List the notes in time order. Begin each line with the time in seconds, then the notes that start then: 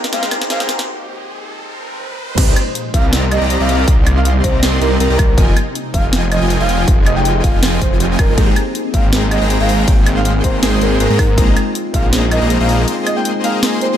Already playing: A#2 F3 G#3 A#3 C4 D#4 G4 C5, riser
0.04 snare
0.11 G#3 A#3 C4 D#4 G#4 C5 F5 G5 A#5, snare, closed hi-hat
0.15 G4
0.23 snare
0.31 snare, closed hi-hat, high woodblock
0.42 snare
0.48 G#3 A#3 C4 D#4 G#4 C5 F5 G5 A#5, snare, closed hi-hat
0.52 G4
0.60 snare
0.69 snare, closed hi-hat
0.79 snare
1.63 swell
2.00 high tom
2.10 high tom
2.19 mid tom
2.29 mid tom
2.38 C2 C3 G3 A#3 C4 D#4 G4 D5 D#5 A#5, kick, closed hi-hat, crash
2.56 closed hi-hat, high woodblock
2.75 closed hi-hat
2.94 C2 C4 G4 D5 D#5 F5 A#5, kick, closed hi-hat
3.13 snare, closed hi-hat
3.31 D#5, closed hi-hat, high woodblock
3.42 C2 C4 G4 D5 D#5 A#5
3.50 closed hi-hat
3.60 C2 C4 G4 D5 D#5 F5 A#5
3.69 F5, closed hi-hat
3.88 C2 C4 G4 D5 D#5 C6, kick, closed hi-hat
4.07 closed hi-hat, high woodblock
4.16 F5
4.25 F5, closed hi-hat
4.44 C2 C4 G4 C5 D5 D#5 A#5, kick, closed hi-hat
4.63 C2 C4 G4 D5 D#5 C6, snare, closed hi-hat
4.81 C2 C4 G4 A#4 D5 D#5 C6, closed hi-hat
5.00 C2 C4 G4 A#4 D5 D#5 A#5, closed hi-hat
5.10 C2 C4 G4 D5 D#5 A#5
5.19 kick, closed hi-hat, high woodblock
5.38 F1 F3 C4 F4 G#4 D#5 G5 G#5, kick, closed hi-hat
5.57 closed hi-hat, high woodblock
5.75 closed hi-hat
5.94 F1 F3 F4 D#5 F5 G5 G#5, kick, closed hi-hat
6.13 snare, closed hi-hat
6.31 D#5, closed hi-hat, high woodblock
6.42 F1 F3 F4 D#5 G5 G#5
6.50 closed hi-hat
6.60 F1 F3 F4 D#5 F5 G5 G#5
6.69 F5, closed hi-hat
6.88 F1 F3 F4 D#5 G5 G#5, kick, closed hi-hat
7.06 D#5, closed hi-hat, high woodblock
7.17 G5
7.25 closed hi-hat
7.44 F1 F3 F4 D#5 F5 G5 G#5, kick, closed hi-hat
7.63 F1 F3 F4 D#5 G5 G#5, snare, closed hi-hat
7.81 F1 F3 F4 C5 D#5 G5 G#5, kick, closed hi-hat
8.00 closed hi-hat
8.19 F1 F3 F4 A#4 D#5 G5 G#5, kick, closed hi-hat, high woodblock
8.36 G#1 G#3 A#3 C4 D#4 G4 G#4 C5 G5 A#5, kick, closed hi-hat, ride
8.56 closed hi-hat, high woodblock
8.75 closed hi-hat
8.92 G#1 G#3 A#3 C4 D#4 G#4 C5 F5 G5 A#5, kick, closed hi-hat
9.13 snare, closed hi-hat, ride
9.31 D#5, closed hi-hat, high woodblock
9.42 G#1 G#3 G#4 C5 G5 A#5
9.50 closed hi-hat
9.60 G#1 G#3 G#4 C5 F5 G5 A#5
9.69 F5, open hi-hat
9.86 G#1 G#3 A#3 C4 D#4 G#4 C5 G5 C6, kick, closed hi-hat, ride
10.06 closed hi-hat, high woodblock
10.17 F5
10.25 F5, closed hi-hat
10.43 G#1 G#3 A#3 C4 D#4 G#4 A#4 C5 G5 A#5, kick, closed hi-hat
10.63 G#1 G#3 G#4 C5 G5 C6, snare, closed hi-hat, ride
10.80 G#1 G#3 A#3 C4 D#4 G#4 A#4 C5 G5 C6, closed hi-hat
10.84 G#4
11.00 G#1 G#3 G#4 A#4 C5 G5 A#5, closed hi-hat
11.10 G#2 G#3 G#4 C5 G5 A#5
11.19 kick, open hi-hat, high woodblock
11.36 A#1 G#3 A#3 C4 D#4 F4 G#4 C5 D#5 A#5, kick, closed hi-hat, ride
11.57 closed hi-hat, high woodblock
11.75 closed hi-hat
11.92 A#1 G#3 A#3 C4 D#4 F4 G#4 C5 D#5 F5 A#5, kick, closed hi-hat
12.13 snare, closed hi-hat, ride
12.31 D#5, closed hi-hat, high woodblock
12.42 A#1 A#3 G#4 C5 D#5 A#5
12.50 closed hi-hat
12.60 A#1 A#3 G#4 C5 D#5 F5 A#5
12.69 F5, open hi-hat
12.86 G#3 A#3 C4 D#4 G#4 C5 D#5 C6, closed hi-hat, ride
12.90 F4
13.07 D#5, closed hi-hat, high woodblock
13.17 G5
13.25 closed hi-hat
13.43 G#3 A#3 C4 D#4 G#4 C5 D#5 F5 A#5, closed hi-hat
13.63 A#3 G#4 C5 D#5 C6, snare, closed hi-hat, ride
13.79 G#3 A#3 C4 D#4 G#4 C5 D#5 G5 C6, closed hi-hat